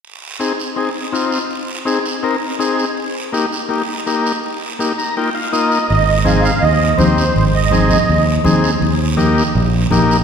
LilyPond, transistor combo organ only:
\new Staff \with { instrumentName = "Transistor combo organ" } { \time 4/4 \key aes \major \tempo 4 = 164 << { r1 | r1 | r1 | r4. bes''8 g''8 f''8 ees''4 |
r1 | r1 | r1 | } \\ { r4 <c' ees' aes'>8 r8 <c' ees' aes'>8 r8 <c' ees' f'>8 r8 | r4 <c' ees' aes'>8 r8 <c' ees' bes'>8 r8 <c' ees' aes'>8 r8 | r4 <bes ees' g'>8 r8 <bes ees' g'>8 r8 <bes ees' g'>8 r8 | r4 <bes ees' g'>8 r8 <bes ees' f'>8 r8 <bes ees' f'>8 r8 |
r4 <c' ees' aes'>8 r4. <c' ees' g'>8 r8 | r4 <c' ees' aes'>8 r4. <c' ees' aes'>8 r8 | r4 <bes ees' g'>8 r4. <bes ees' g'>8 r8 | } >> }